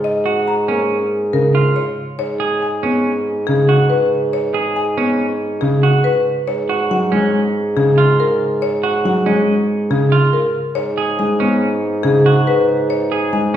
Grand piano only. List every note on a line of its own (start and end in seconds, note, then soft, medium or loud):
0.69 0.97 A#3 medium
1.33 1.61 C#3 medium
2.83 3.11 B3 medium
3.48 3.76 C#3 medium
4.97 5.25 B3 medium
5.62 5.90 C#3 medium
6.91 7.18 F#3 medium
7.13 7.40 G#3 medium
7.76 8.04 C#3 medium
9.05 9.33 F#3 medium
9.26 9.54 G#3 medium
9.90 10.18 C#3 medium
11.19 11.47 G#3 medium
11.40 11.68 B3 medium
12.04 12.32 C#3 medium
13.33 13.57 G#3 medium